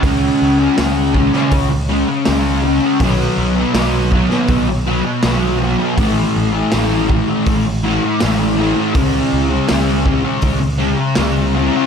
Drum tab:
HH |o---o---o---o---|o---o---o---o---|o---o---o---o---|o---o---o---o---|
SD |----o--o----o---|----o--o----o---|----o-------o---|----o-------o---|
BD |o-----o-o-------|o-----o-o-------|o-----o-o-------|o-----o-o-------|